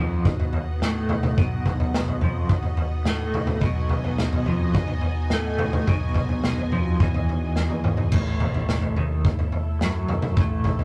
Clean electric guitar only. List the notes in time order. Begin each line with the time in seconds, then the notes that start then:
Already playing: F3
0.83 A3
1.38 B2
2.23 F3
3.08 A3
3.64 B2
4.48 F3
5.33 A3
5.88 B2
6.73 F3
7.01 E3
8.14 A2
8.97 D#3
9.83 F#3
10.39 A2